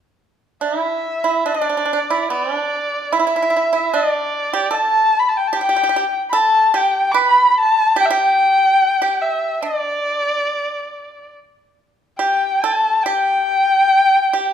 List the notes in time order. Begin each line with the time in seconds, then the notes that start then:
0.61 D4 E5
0.79 E4
1.24 E4
1.46 D4 D5
1.54 D4
1.61 D4
1.69 D4
1.77 D4
1.85 D4
1.93 D4
2.10 E4
2.30 B3 D5
2.55 D4
3.12 E4 E5
3.19 E4
3.27 E4
3.36 E4
3.42 E4
3.50 E4
3.56 E4
3.73 E4
3.94 D4 D5
4.53 G4
4.71 A4 A5
5.19 B5
5.28 A5
5.37 G5
5.47 A5
5.53 G4
5.57 G4 G5
5.69 G4
5.76 G4
5.83 G4
5.89 G4
5.96 G4
6.30 A4 B5
6.37 A5
6.74 G4 G5
7.11 B4 D6
7.17 B5
7.50 B5
7.58 A5
7.96 G4 G5
8.05 E5
8.10 G4 G5
9.02 G4
9.21 E5
9.61 D4 D5
12.18 G4 G5
12.62 A4 A5
13.03 G4 G5
14.33 G4